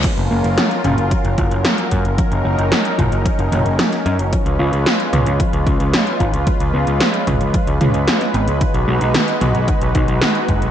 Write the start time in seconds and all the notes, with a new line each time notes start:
0.04 F3 F#3 C#4 F4 A#4, kick, closed hi-hat, crash
0.18 F#1, closed hi-hat
0.31 F#1 A#3
0.44 F#1, closed hi-hat
0.57 F3, snare, closed hi-hat
0.71 closed hi-hat
0.84 F#1 C#4, closed hi-hat, mid tom
0.98 F#1, closed hi-hat
1.11 F3, kick, closed hi-hat
1.25 F#1, closed hi-hat
1.38 F#1 F4, kick, closed hi-hat
1.51 F#1, closed hi-hat
1.64 F3, snare, closed hi-hat
1.78 closed hi-hat
1.91 F#2 A#3, kick, closed hi-hat
2.05 F#1, closed hi-hat
2.18 F3 D#4, kick, closed hi-hat
2.32 F#1, closed hi-hat
2.45 F#1 C#4
2.58 F#1, closed hi-hat
2.72 F3, snare, closed hi-hat
2.85 closed hi-hat
2.98 F#1 F4, kick, closed hi-hat, mid tom
3.12 F#1, closed hi-hat
3.25 F3, kick, closed hi-hat
3.39 F#1, closed hi-hat
3.52 F#1 A#3, closed hi-hat, mid tom
3.65 F#1, closed hi-hat
3.79 F3, snare, closed hi-hat
3.92 snare, closed hi-hat
4.06 F#2 C#4, closed hi-hat
4.19 F#1, closed hi-hat
4.32 F3 G#3 F4 B4, kick, closed hi-hat
4.46 C#2, closed hi-hat
4.59 C#2 F4
4.73 C#2, closed hi-hat
4.86 F3, snare, closed hi-hat
5.00 closed hi-hat
5.13 C#2 B3, closed hi-hat, mid tom
5.26 C#2, closed hi-hat
5.40 F3, kick, closed hi-hat
5.53 C#2, closed hi-hat
5.67 C#2 C#4, kick, closed hi-hat
5.80 C#2, closed hi-hat
5.93 F3, snare, closed hi-hat
6.07 closed hi-hat
6.20 G#1 F4, kick, closed hi-hat
6.34 C#2, closed hi-hat
6.47 F3, kick, closed hi-hat
6.60 C#2, closed hi-hat
6.73 C#2 B3
6.87 C#2, closed hi-hat
7.00 F3, snare, closed hi-hat
7.14 closed hi-hat
7.27 C#2 C#4, kick, closed hi-hat, mid tom
7.41 C#2, closed hi-hat
7.54 F3, kick, closed hi-hat
7.67 C#2, closed hi-hat
7.81 C#2 F4, closed hi-hat, mid tom
7.94 C#2, closed hi-hat
8.07 F3, snare, closed hi-hat
8.21 snare, closed hi-hat
8.34 G#1 B3, closed hi-hat
8.48 C#2, closed hi-hat
8.61 D#3 D#4 F#4, kick, closed hi-hat
8.74 B1, closed hi-hat
8.88 B1 G#3
9.01 B1, closed hi-hat
9.14 D#3, snare, closed hi-hat
9.28 closed hi-hat
9.41 B1 B3, closed hi-hat, mid tom
9.55 B1, closed hi-hat
9.68 D#3, kick, closed hi-hat
9.81 B1, closed hi-hat
9.95 B1 D#4, kick, closed hi-hat
10.08 B1, closed hi-hat
10.21 D#3, snare, closed hi-hat
10.35 closed hi-hat
10.48 F#1 G#3, kick, closed hi-hat
10.62 B1, closed hi-hat